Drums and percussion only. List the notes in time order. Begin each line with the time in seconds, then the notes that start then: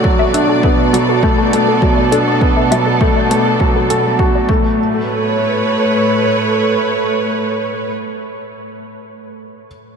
0.04 kick
0.34 closed hi-hat
0.63 kick
0.94 closed hi-hat
1.23 kick
1.53 closed hi-hat
1.82 kick
2.12 closed hi-hat
2.41 kick
2.72 closed hi-hat
3.01 kick
3.31 closed hi-hat
3.60 kick
3.90 closed hi-hat
4.19 kick
4.49 kick